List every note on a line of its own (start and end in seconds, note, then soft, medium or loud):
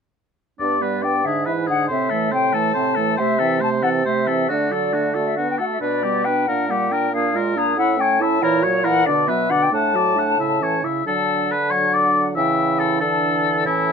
0.59 1.27 G2 soft
0.59 0.83 B3 soft
0.59 0.82 D4 soft
0.59 0.84 D5 soft
0.59 1.05 D5 soft
0.81 1.04 G3 soft
0.81 1.05 B3 soft
0.81 1.04 B4 soft
1.03 1.24 B3 soft
1.03 1.23 D4 soft
1.03 1.25 D5 soft
1.03 1.26 G5 medium
1.24 1.89 G#2 soft
1.24 1.48 D3 soft
1.24 1.48 D4 soft
1.24 1.47 G#4 soft
1.24 1.45 E5 medium
1.46 1.70 E3 soft
1.46 1.70 E4 soft
1.46 1.69 B4 soft
1.46 1.52 E5 medium
1.67 1.89 D3 soft
1.67 1.90 D4 soft
1.67 1.87 G#4 soft
1.67 1.89 F#5 medium
1.88 3.16 A2 soft
1.88 2.13 C3 soft
1.88 2.13 C4 soft
1.88 2.11 C5 soft
1.88 2.32 E5 medium
2.10 2.34 E3 soft
2.10 2.35 A3 soft
2.10 2.33 A4 soft
2.31 2.55 C3 soft
2.31 2.55 C4 soft
2.31 2.54 C5 soft
2.31 2.56 G5 medium
2.53 2.75 E3 soft
2.53 2.74 A3 soft
2.53 2.73 A4 soft
2.53 3.20 A5 medium
2.74 2.99 C3 soft
2.74 2.99 C4 soft
2.74 2.97 C5 soft
2.95 3.18 E3 soft
2.95 3.17 A3 soft
2.95 3.16 A4 soft
3.17 4.51 C3 medium
3.17 3.42 C3 medium
3.17 3.41 A3 soft
3.17 3.41 C5 soft
3.17 3.61 E5 medium
3.39 3.64 E3 soft
3.39 3.62 C4 soft
3.39 3.62 A4 soft
3.60 3.84 C3 soft
3.60 3.84 A3 soft
3.60 3.84 C5 soft
3.60 3.69 A5 medium
3.82 4.04 E3 soft
3.82 4.05 C4 soft
3.82 4.05 A4 soft
3.82 3.89 F#5 medium
4.05 4.28 C3 soft
4.05 4.29 A3 soft
4.05 4.28 C5 soft
4.05 4.51 E5 soft
4.27 4.49 E3 soft
4.27 4.48 C4 soft
4.27 4.48 A4 soft
4.49 5.59 D3 soft
4.49 4.74 A3 soft
4.49 4.73 D4 soft
4.49 4.74 F#4 soft
4.49 5.28 D5 medium
4.72 4.94 F#3 soft
4.72 4.95 F#4 soft
4.72 4.95 A4 soft
4.92 5.14 A3 soft
4.92 5.16 D4 soft
4.92 5.16 F#4 soft
5.15 5.35 A3 soft
5.15 5.37 F#4 soft
5.15 5.36 A4 soft
5.27 5.39 E5 soft
5.37 5.61 B3 soft
5.37 5.61 D4 soft
5.37 5.60 F#4 soft
5.37 5.48 F#5 soft
5.50 5.55 G5 soft
5.59 5.80 A3 soft
5.59 5.80 F#4 soft
5.59 5.81 A4 soft
5.59 5.65 F#5 soft
5.71 5.80 E5 soft
5.80 6.43 B2 soft
5.80 6.04 B3 soft
5.80 6.06 D4 soft
5.80 6.05 B4 soft
5.80 6.26 D5 medium
6.03 6.27 G3 soft
6.03 6.28 B3 soft
6.03 6.26 G4 soft
6.24 6.47 B3 soft
6.24 6.48 D4 soft
6.24 6.47 B4 soft
6.24 6.49 G5 medium
6.47 7.79 A#2 soft
6.47 6.70 A#3 soft
6.47 6.71 D4 soft
6.47 6.72 A#4 soft
6.47 6.68 F#5 medium
6.68 6.93 G3 soft
6.68 6.93 A#3 soft
6.68 6.94 G4 soft
6.68 6.92 F#5 medium
6.91 7.11 A#3 soft
6.91 7.12 D4 soft
6.91 7.13 A#4 soft
6.91 7.12 G5 soft
7.12 7.35 A#3 soft
7.12 7.36 D4 soft
7.12 7.38 G#4 soft
7.12 7.37 F5 medium
7.34 7.58 G#3 soft
7.34 7.57 F4 soft
7.34 7.60 A#4 soft
7.56 7.77 A#3 soft
7.56 7.77 D4 soft
7.56 7.78 G#4 soft
7.56 7.77 A#5 medium
7.77 8.42 A2 soft
7.77 8.00 C#4 soft
7.77 7.99 E4 soft
7.77 8.02 E5 soft
7.77 8.01 F#5 medium
7.97 8.22 A3 soft
7.97 8.21 C#4 soft
7.97 8.23 C#5 soft
7.97 8.21 G5 medium
8.20 8.42 C#4 soft
8.20 8.40 E4 soft
8.20 8.42 E5 soft
8.20 8.44 A5 medium
8.41 9.09 A#2 medium
8.41 8.66 E3 medium
8.41 8.63 E4 soft
8.41 8.65 A#4 soft
8.41 8.86 C#5 medium
8.62 8.87 F#3 soft
8.62 8.85 F#4 soft
8.62 8.86 C#5 soft
8.84 9.07 E3 soft
8.84 9.06 E4 soft
8.84 9.06 A#4 soft
8.84 9.07 F#5 medium
9.06 9.72 B2 medium
9.06 9.31 D3 soft
9.06 9.29 D4 soft
9.06 9.29 D5 medium
9.06 9.30 D5 soft
9.27 9.52 F#3 soft
9.27 9.51 B3 soft
9.27 9.53 B4 soft
9.27 9.51 E5 medium
9.50 9.71 D3 soft
9.50 9.71 D4 soft
9.50 9.73 D5 soft
9.50 9.64 F#5 medium
9.62 9.72 G5 medium
9.71 10.82 A2 soft
9.71 9.96 A3 soft
9.71 9.95 D4 soft
9.71 9.97 F#5 soft
9.71 10.82 A5 medium
9.94 10.17 F#3 soft
9.94 10.18 F#4 soft
9.94 10.20 D5 soft
10.16 10.37 A3 soft
10.16 10.38 D4 soft
10.16 10.39 F#5 soft
10.38 10.62 C#3 soft
10.38 10.62 E4 soft
10.38 10.64 E5 soft
10.61 10.85 E3 soft
10.61 10.85 C#4 soft
10.61 10.86 C#5 soft
10.84 11.05 C#3 soft
10.84 11.05 E4 soft
10.84 11.06 E5 soft
11.06 12.33 D3 soft
11.06 11.54 F#3 soft
11.06 11.55 D4 soft
11.06 11.53 A4 medium
11.06 11.72 A5 soft
11.51 11.72 B4 soft
11.71 12.38 F#3 soft
11.71 12.39 D4 soft
11.71 11.95 C#5 medium
11.71 12.36 F#5 soft
11.94 12.24 D5 soft
12.36 13.03 C#3 soft
12.36 13.92 E3 soft
12.36 13.02 E4 soft
12.36 12.81 E5 medium
12.36 13.00 G5 soft
12.79 13.00 A4 soft
13.01 13.68 D3 soft
13.01 13.65 D4 soft
13.01 13.64 A4 medium
13.01 13.65 A5 soft
13.65 13.92 A2 soft
13.65 13.92 C#4 soft
13.65 13.92 E4 medium
13.65 13.92 A5 soft